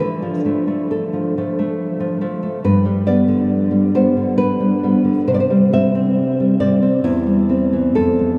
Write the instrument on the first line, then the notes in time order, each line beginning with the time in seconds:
nylon-string guitar
0.00 D3 B4
0.22 F3
0.45 F3 A3
0.68 A3
0.91 A4
1.13 F3
1.38 F3 A3
1.59 A3
2.00 F3
2.21 F3 A3
2.43 A3
2.64 G2 B4
2.85 G3
3.06 G3 B3 D5
3.28 D3
3.71 G3
3.95 G3 B3 C5
4.17 D3
4.38 B4
4.60 G3
4.83 G3 B3
5.04 D3
5.27 C3 C5
5.34 D5
5.40 C5
5.50 G3
5.73 G3 C4 E5
5.95 C4
6.40 G3
6.60 G3 C4 D5
6.82 C4
7.04 E2 E4
7.26 G3
7.49 G3 C4
7.73 E3
7.95 F2 A4
8.19 A3